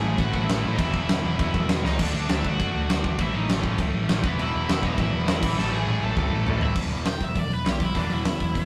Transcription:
Already playing: A2 E3 A3 C#4 E4 G#4 G#5
0.03 A1
0.18 A1 A2 E3 A3 C#4 E4 F#4 F#5, kick, crash
0.33 A1 F#4 F#5, kick
0.43 E4 E5
0.49 A1, snare, crash
0.63 A2 E3 A3
0.73 D#4 D#5
0.77 E1 E2 B2 E3 G#3 B3 E4 E5, kick, crash
0.93 E1, kick
1.09 E1, snare, crash
1.24 E1
1.37 E1 E3 G#3 B3 E4, kick, crash
1.54 E1, kick
1.69 E1, snare, crash
1.84 C#2 E2 B2 E3 D#4 D#5, snare
1.98 D2 D3 A3 D4 F#4, kick, crash
2.02 D5
2.15 D2
2.29 D2 D3 A3 D4, snare, crash
2.33 E4 E5
2.44 D2 F#4, kick
2.49 F#5
2.58 F#2 D3 A3 D4, kick, crash
2.75 D2
2.89 D2 D3 A3 D4, snare, crash
3.04 D2, kick
3.18 A1 A2 E3 A3 C#4 E4, kick, crash
3.23 E5
3.34 A1 D#4 D#5
3.48 A1 A2 E3 A3 C#4 C#5, snare, crash
3.64 A1, kick
3.78 C#2 A2 E3 A3, kick, crash
3.93 A1
4.09 A1 A2 E3 A3, snare, crash
4.23 E1 E3 G#3 B3 E4 B4, kick
4.27 B3
4.39 E1 E2 B2 E3 E4 E5, crash
4.55 E1
4.69 E1 E2 B2 E3 E4 E5, snare, crash
4.83 E1 D#4 C#5 D#5, kick
4.93 E4 E5
4.98 A1 E2 B2 E3 E5, kick, crash
5.03 E4
5.13 E1
5.28 E1 E2 B2 E3, snare, crash
5.41 A1 A2 E3 A3 C#4 E4, kick, crash
5.57 A1 A2 E3 A3 A4 A5, snare
5.71 A1 G#4 G#5
5.87 A1 A2 E3 A3, high tom
6.01 A1 A4, high tom
6.05 A5
6.17 C#2 A2 E3 A3, kick, mid tom
6.32 A1
6.47 A1 A2 E3 A3, floor tom
6.61 A1 E4 E5, floor tom
6.76 E1 E2 B2 E3, kick, crash
6.91 E1, open hi-hat
7.05 E1 E2 B2 G5, snare, open hi-hat
7.21 E1 E5, kick, open hi-hat
7.35 E1 E2 B2 D5, kick, open hi-hat
7.51 E1 B4, open hi-hat
7.65 B1 E2 B2, snare, open hi-hat
7.70 G4
7.80 B1 E4, kick, open hi-hat
7.95 E1 E2 B2 E3 D4, kick, open hi-hat
8.10 E1 E4, open hi-hat
8.25 E1 E2 B2, snare, open hi-hat
8.40 E2, kick, open hi-hat
8.54 E1 E2 B2, kick, open hi-hat

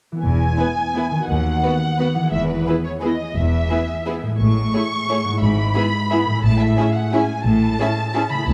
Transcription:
0.12 E3 B3
0.16 E4 B4
0.23 E1 E2 G#5
0.58 B3 E4 B4
0.96 B3 E4 B4
1.11 D#3
1.16 B3
1.20 F#4
1.24 B4
1.30 D#2 F#5
1.63 B3 F#4 B4
1.99 B3 F#4 B4
2.15 E3
2.19 B3
2.24 G#4
2.28 B4
2.33 E1 E2 E5
2.48 B4
2.68 B3 E4 G#4 B4
2.84 C#5
3.01 B3 E4 G#4 B4 D#5
3.36 E1 E2 E5
3.70 B3 E4 G#4 B4
4.06 B3 E4 G#4 B4
4.22 A2
4.27 G#3
4.31 E4
4.36 C#5
4.40 A1 A2 C#6
4.73 A3 E4 G#4 C#5
5.09 A3 E4 G#4 C#5
5.24 G#2
5.28 G#3
5.33 E4
5.37 E5
5.42 G#1 G#2 B5
5.74 B3 E4 G#4 E5
6.10 B3 E4 G#4 E5
6.26 A2
6.30 G#3
6.34 E4
6.39 C#5
6.44 A1 A2 A5
6.60 E5
6.77 C#4 E4 G#4 E5
6.95 F#5
7.12 C#4 E4 G#4 E5 G#5
7.45 A1 A2 A5
7.80 C#4 E4 G#4 E5
8.14 C#4 E4 G#4 E5
8.29 C#3 B5
8.34 A3
8.38 E4
8.43 C#5
8.48 C#2 A5

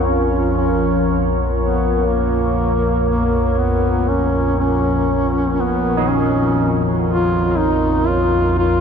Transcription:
Already playing: A#1 F2 F3 F4 A#4 C#5
0.08 C#4
0.57 C#4
1.58 B3
2.08 A#3
3.09 A#3
3.58 B3
4.08 C#4
4.59 C#4
5.60 B3
5.97 D#4
6.09 C#4
7.09 F4
7.58 D#4
8.08 F4
8.59 F4

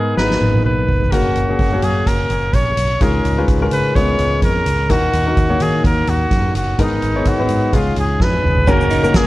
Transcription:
Already playing: G#2 D#3 B3 D#4 G#4 A#4
0.17 G#1 A#3 D#4 G#4 B4 A#5, snare
0.23 B3
0.31 snare
0.41 G#1, high tom
0.54 high tom
0.64 B1 B4
0.88 F1, floor tom
1.02 floor tom
1.12 F#1 C#3 A#3 C#4 F#4 A#4, kick, closed hi-hat
1.35 F#1, closed hi-hat
1.49 A#3 C#4 F#4 G#4
1.59 F#1, kick, closed hi-hat
1.73 A#3 C#4 F#4 C#5
1.82 F#2 G#4, closed hi-hat
2.07 F#1 A#4, kick, closed hi-hat
2.30 F#1, closed hi-hat
2.53 A#1 C#5, kick, closed hi-hat
2.77 B1, closed hi-hat
3.01 C#2 G#2 G#3 C#4 F4 G#4 A#4, kick, closed hi-hat
3.24 C#2, closed hi-hat
3.38 G#3 C#4 F4 B4
3.48 C#2, kick, closed hi-hat
3.61 G#3 C#4 F4 A#4
3.71 C#3 B4, closed hi-hat
3.95 C#2 G#3 B3 C#4 F4 C#5, kick, closed hi-hat
4.19 C#2, closed hi-hat
4.42 F2 A#4, kick, closed hi-hat
4.66 C#2, closed hi-hat
4.89 D#2 A#2 A#3 D#4 F#4 A#4, kick, closed hi-hat
5.13 D#2, closed hi-hat
5.26 A#3 D#4 F#4 A#4
5.37 D#2, kick, closed hi-hat
5.49 A#3 D#4 F#4 C#5
5.60 D#3 G#4, closed hi-hat
5.84 D#2 A#4, kick, closed hi-hat
6.07 D#2 F#4, closed hi-hat
6.31 F#2, kick, closed hi-hat
6.55 F#1 F#4, closed hi-hat
6.78 G#1 G#2 D#3 B3 D#4 G#4 A#4, kick, closed hi-hat
7.02 G#1, closed hi-hat
7.15 B3 D#4 G#4 C#5
7.25 G#1 F#4, kick, closed hi-hat
7.39 B3 D#4 G#4 B4
7.49 G#2, closed hi-hat
7.73 C#2 G#2 G#3 C#4 F4 G#4, kick, closed hi-hat
7.96 C#2 G#4, closed hi-hat
8.20 F2 B4, kick, snare
8.44 F1, mid tom
8.57 floor tom
8.67 F#1 C#3 A#3 C#4 F#4 A#4, kick, crash, shaker
8.81 shaker
8.90 D#4, closed hi-hat, shaker
9.04 A#3 C#4 F#4 A#4, shaker
9.14 F#1 G#4, kick, snare, closed hi-hat, shaker

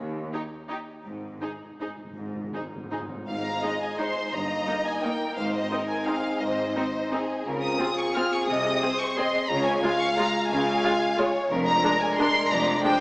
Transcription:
0.00 D#2
0.33 D#4 G4 C#5
0.69 D#4 G4 C#5
1.05 G#1 G#2
1.13 G#2
1.22 G#2
1.30 G#2
1.38 G#2 D#4 C5
1.42 G#4
1.47 G#2
1.55 G#2
1.63 G#2
1.71 G#2
1.80 G#2 D#4 G#4 C5
1.87 G#2
1.96 G#2
2.04 G#2
2.11 G#2
2.18 G#1 G#2
2.26 G#2
2.35 G#2
2.42 G#2
2.51 G#2 D#4 C5
2.55 G#2 G#4
2.67 G#2
2.75 G#2
2.84 G#2
2.91 G#2 D#4 G#4 C5
3.00 G#2
3.07 G#2
3.14 G#2
3.27 G#1 G#2 G#3 D#4 F5
3.44 A#5
3.63 G#3 D#4 D#5
3.81 G#5
3.98 G#3 D#4 C5 C6
4.32 G1 G2 A#3 D#5 A#5
4.67 A#3 D#4
4.85 G#5
5.02 A#3 D#4 A#4 G5
5.36 G#1 G#2 C4 D#4 C5 F5
5.54 D#5
5.71 C4 D#4 A#4
5.88 G#5
6.05 C4 D#4 G#4 F5
6.40 G#1 G#2 C5 D#5
6.76 C4 D#4 C5
7.12 C4 D#4 G#4
7.45 C#2 C#3 C4 F4 A#4
7.62 D#6
7.79 C4 F4 G#4
7.98 C#6
8.16 C4 F4 F6
8.33 C#6
8.47 C2 C3 G#4 D#5 D#6
8.82 C4 G#4 C5
8.99 C#6
9.16 C4 G#4 D#5 C6
9.49 C#2 C#3 G#3 F4 C#5 A#5
9.64 G#5
9.83 G#3 F4 F5
9.99 C#6
10.16 G#3 F4 A#5
10.48 C#2 C#3 F5 G#5
10.84 G#3 F4
11.18 G#3 F4 C#5
11.50 F1 F2 G#3 D4 A#4
11.66 A#5
11.84 G#3 D4 A#4
12.01 G#5
12.17 G#3 D4 C6
12.51 F1 F2 D5 A#5
12.83 G#3 D4 C5 G5

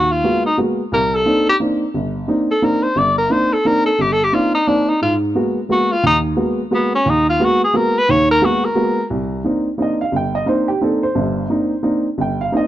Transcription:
Already playing: D#2 F#4
0.12 F4
0.24 G#3 A#3 B3 F#4
0.46 D#4
0.57 G#3 A#3 B3 F#4
0.92 C2 A#4
1.15 A4
1.26 A#3 C4 D4 D#4
1.49 G4
1.60 A#3 C4 D4 D#4
1.94 G1
2.28 A#3 C4 D4 D#4
2.51 A4
2.62 A#3 C4 D4 D#4 A#4
2.83 C5
2.96 G1 D5
3.18 A#4
3.30 A#3 C4 D4 D#4 C5
3.53 A4
3.65 A#3 C4 D4 D#4 A#4
3.86 A4
3.99 G1 G4
4.12 A4
4.24 G4
4.33 A#3 C4 D4 D#4 F4
4.54 D#4
4.67 A#3 C4 D4 D#4
4.89 D#4
5.02 G#2 F4
5.35 G#3 A#3 B3 F#4
5.69 G#3 A#3 B3 F#4
5.92 F4
6.03 D#2 D#4
6.36 G#3 A#3 B3 F#4
6.71 G#3 A#3 B3 F#4
6.95 C#4
7.06 D#2
7.10 D#4
7.30 F4
7.39 G#3 A#3 B3 F#4
7.45 F#4
7.64 G#4
7.74 G#3 A#3 B3 F#4 A#4
7.98 B4
8.08 D#2 D#3 C#5
8.31 A#4
8.41 G#3 A#3 B3 F#4
8.65 A#4
8.75 G#3 A#3 B3 F#4
9.10 C2
9.44 A#3 C4 D4 D#4
9.78 A#3 C4 D4 D#4
9.82 D#5
10.01 F5
10.12 G1 G5
10.35 D#5
10.46 A#3 C4 D4 D#4 C5
10.68 G4
10.81 A#3 C4 D4 D#4 A4
11.03 C5
11.15 G1 G2
11.50 A#3 C4 D4 D#4
11.83 A#3 C4 D4 D#4
12.18 G1 G5
12.41 F5
12.52 A#3 C4 D4 D#4
12.57 D#5

